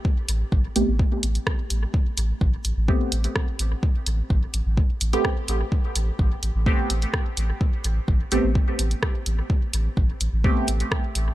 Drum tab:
HH |--x---x---xx--x-|--x---x---xx--x-|--x---x---xx--x-|--x---x---xx--x-|
SD |------------r---|------------r---|------------r---|------------r---|
BD |o---o---o---o---|o---o---o---o---|o---o---o---o---|o---o---o---o---|

HH |--x---x---xx--x-|--x---x---xx--x-|
SD |------------r---|------------r---|
BD |o---o---o---o---|o---o---o---o---|